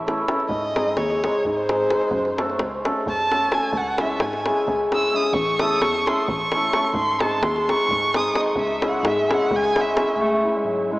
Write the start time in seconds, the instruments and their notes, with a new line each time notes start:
Already playing: tine electric piano A1
0.07 hammered dulcimer E3 A3 C#4 E4, davul high
0.28 hammered dulcimer E3 A3 C#4 E4, davul high
0.40 davul high
0.49 tine electric piano G#2, violin D#5, davul low
0.76 hammered dulcimer G#3 C4 D#4 G#4, davul high
0.97 tine electric piano D#2, violin C#5, davul high
1.10 davul high
1.22 hammered dulcimer G#3 C4 D#4 G#4, davul high
1.45 tine electric piano G#2, violin C#5, davul low
1.57 violin C5
1.69 hammered dulcimer G#3 C4 D#4 G#4, davul high
1.90 hammered dulcimer G#3 C4 D#4 G#4, davul high
2.01 davul high
2.11 tine electric piano F#2, davul low
2.25 davul high
2.37 hammered dulcimer A3 C#4 F#4 A4, davul high
2.50 davul high
2.59 tine electric piano C#2, davul high
2.84 hammered dulcimer A3 C#4 F#4 A4, davul high
3.06 tine electric piano F#2, violin A5, davul low
3.19 davul high
3.30 hammered dulcimer A3 C#4 F#4 A4, davul high
3.51 hammered dulcimer A3 C#4 F#4 A4, violin G#5, davul high
3.63 davul high
3.72 tine electric piano C#2, davul low
3.77 violin F#5
3.98 hammered dulcimer G#3 C#4 E4 G#4, violin E5, davul high
4.20 tine electric piano G#2, violin G#5, davul high
4.33 davul high
4.46 hammered dulcimer G#3 C#4 E4 G#4, davul high
4.67 tine electric piano C#2, davul low
4.92 hammered dulcimer G#3 C#4 E4 G#4, violin E6, davul high
5.12 hammered dulcimer G#3 C#4 E4 G#4, violin D#6
5.23 davul high
5.33 tine electric piano A1, violin C#6, davul low
5.59 hammered dulcimer A3 C#4 E4 A4, violin D#6, davul high
5.81 tine electric piano E2, violin C#6, davul high
5.95 davul high
6.06 hammered dulcimer A3 C#4 E4 A4, violin C6, davul high
6.28 tine electric piano A1, violin C#6, davul low
6.52 hammered dulcimer A3 C#4 E4 A4, davul high
6.73 hammered dulcimer A3 C#4 E4 A4, davul high
6.84 davul high
6.93 tine electric piano G#2, violin C6, davul low
7.20 hammered dulcimer G#3 C4 D#4 G#4, violin A5, davul high
7.42 tine electric piano D#2, violin C6, davul high
7.56 davul high
7.69 hammered dulcimer G#3 C4 D#4 G#4, violin C#6, davul high
7.89 tine electric piano G#2, davul low
8.14 hammered dulcimer G#3 C4 D#4 G#4, violin D#6, davul high
8.34 hammered dulcimer G#3 C4 D#4 G#4, davul high
8.40 violin D#5
8.46 davul high
8.56 tine electric piano C#2, violin E5, davul low
8.80 hammered dulcimer G#3 C#4 E4 G#4, davul high
8.87 violin F#5
8.94 davul high
9.03 tine electric piano G#2, violin E5, davul high
9.28 hammered dulcimer G#3 C#4 E4 G#4, davul high
9.34 violin F#5
9.41 davul high
9.51 tine electric piano C#2, davul low
9.56 violin G#5
9.64 davul high
9.74 hammered dulcimer G#3 C#4 E4 G#4, davul high
9.80 violin E5
9.95 hammered dulcimer G#3 C#4 E4 G#4, davul high
10.09 davul high
10.16 tine electric piano C#2, clarinet A3
10.43 hammered dulcimer E3 G#3 C#4 E4
10.57 clarinet G#3
10.65 tine electric piano G#2, clarinet F#3
10.90 hammered dulcimer E3 G#3 C#4 E4, clarinet G#3